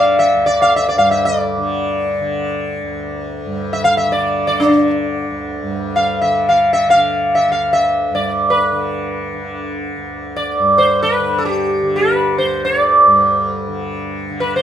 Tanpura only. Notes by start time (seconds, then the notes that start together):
Already playing: D2 G2 D3
0.35 D2
0.96 G2
1.58 D3
2.20 D3
2.82 D2
3.45 G2
4.07 D3
4.68 D3
5.30 D2
5.62 G2
6.24 D3
6.87 D3
7.48 D2
8.10 G2
8.72 D3
9.34 D3
9.96 D2
10.59 G2
11.19 D3
11.82 D3
12.43 D2
13.05 G2
13.68 D3
14.30 D3